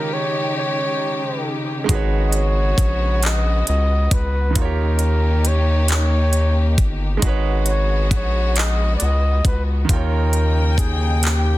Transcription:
Already playing: string section C#3 G#3 D#4 G4, grand piano D#3 D#4 F4 G4 C#5, flugelhorn A#4
0.13 flugelhorn C#5
0.58 flugelhorn C#5
1.84 grand piano G#3 D#4 F#4, string section G#3 B3
1.88 analog synth bass G#1, string section F#4, grand piano G#4, kick, closed hi-hat
1.93 grand piano B4 C#5
2.28 flugelhorn D#5
2.32 flugelhorn C#5, closed hi-hat
2.78 analog synth bass A#1, kick, closed hi-hat
3.23 flugelhorn D#5, clap, closed hi-hat
3.67 analog synth bass C#2, flugelhorn D#5, closed hi-hat
4.11 analog synth bass C#2, flugelhorn B4, kick, closed hi-hat
4.50 grand piano D#3 D#4
4.55 analog synth bass D#2, string section A#3 D#4 G4, grand piano F4 F#4, flugelhorn A#4, kick, closed hi-hat
4.62 grand piano G4 C#5
4.99 closed hi-hat
5.45 flugelhorn C#5, closed hi-hat
5.88 flugelhorn C#5, clap, closed hi-hat
6.33 closed hi-hat
6.78 analog synth bass G1, kick, closed hi-hat
7.17 grand piano G#3 D#4, string section G#3 F#4
7.22 analog synth bass G#1, string section B3, grand piano F#4 G#4, kick, closed hi-hat
7.26 grand piano B4 C#5
7.66 flugelhorn C#5, closed hi-hat
8.11 analog synth bass A#1, kick, closed hi-hat
8.16 flugelhorn C#5
8.56 flugelhorn D#5, clap, closed hi-hat
8.97 flugelhorn D5, closed hi-hat
9.02 analog synth bass C#2, flugelhorn D#5
9.45 analog synth bass C#2, flugelhorn B4, kick, closed hi-hat
9.85 string section C#3 A#3 D#4 G5, grand piano D#3 D#4
9.89 analog synth bass D#2, grand piano F4 G5, flugelhorn A#4, kick, closed hi-hat
9.96 grand piano C#5
10.33 closed hi-hat
10.78 flugelhorn G#4, kick, closed hi-hat
11.23 flugelhorn G4, clap, closed hi-hat

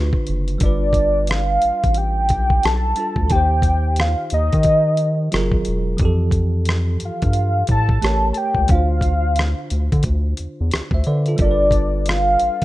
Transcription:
Already playing: analog synth bass D2, tine electric piano D3 D4 F4 B4
0.13 kick
0.27 analog synth bass F#1, closed hi-hat
0.48 closed hi-hat
0.58 analog synth bass G1, tine electric piano G3 D4, kick, closed hi-hat
0.63 tine electric piano F4 B4, soft synth lead D5
0.93 kick, closed hi-hat
1.27 soft synth lead F5, cross-stick, closed hi-hat
1.62 analog synth bass A1, closed hi-hat
1.84 analog synth bass A1, kick, closed hi-hat
1.94 soft synth lead G5, closed hi-hat
2.29 analog synth bass B1, kick, closed hi-hat
2.50 kick
2.63 analog synth bass B1, soft synth lead A5, cross-stick, closed hi-hat
2.96 tine electric piano G3 D4 F4, closed hi-hat
3.00 tine electric piano A4
3.16 analog synth bass D2, kick
3.27 analog synth bass D#2, tine electric piano D#3 D#4, kick, closed hi-hat
3.32 tine electric piano G4 C5, soft synth lead G5
3.62 kick, closed hi-hat
3.96 cross-stick, closed hi-hat
4.01 soft synth lead F5
4.30 analog synth bass D#2, soft synth lead D#5, closed hi-hat
4.52 analog synth bass D#3, kick, closed hi-hat
4.63 kick, closed hi-hat
4.97 closed hi-hat
5.32 analog synth bass F#1, tine electric piano F#3 F4 G#4 A#4, cross-stick, closed hi-hat
5.52 analog synth bass G#1, kick
5.65 analog synth bass E1, closed hi-hat
5.97 analog synth bass F2, tine electric piano E3 F3, kick, closed hi-hat
6.03 tine electric piano G4 A4
6.31 kick, closed hi-hat
6.65 cross-stick, closed hi-hat
7.00 analog synth bass G2, closed hi-hat
7.05 soft synth lead F5
7.22 analog synth bass G2, kick, closed hi-hat
7.33 closed hi-hat
7.67 analog synth bass A2, kick, closed hi-hat
7.71 soft synth lead A5
7.89 kick
8.02 analog synth bass A1, tine electric piano A3 G4 A#4 C#5, cross-stick, closed hi-hat
8.33 soft synth lead A5, closed hi-hat
8.38 soft synth lead G5
8.55 analog synth bass C#2, kick
8.67 analog synth bass D2, tine electric piano D3 D4, soft synth lead F5, kick, closed hi-hat
8.73 tine electric piano F4 C5
9.01 kick, closed hi-hat
9.36 cross-stick, closed hi-hat
9.70 analog synth bass D2, closed hi-hat
9.92 analog synth bass D3, kick, closed hi-hat
10.03 analog synth bass D2, kick, closed hi-hat
10.37 analog synth bass E2, closed hi-hat
10.61 analog synth bass E2
10.71 analog synth bass D2, cross-stick, closed hi-hat
10.91 analog synth bass D2, tine electric piano C5 E5, kick
11.04 analog synth bass D3, tine electric piano B4 D5, closed hi-hat
11.26 tine electric piano F4 A4, closed hi-hat
11.37 analog synth bass G1, tine electric piano G3 D4, kick, closed hi-hat
11.42 tine electric piano F4 A#4, soft synth lead D5
11.51 tine electric piano B4
11.71 kick, closed hi-hat
12.06 soft synth lead F5, cross-stick, closed hi-hat
12.39 analog synth bass A1, closed hi-hat
12.62 closed hi-hat

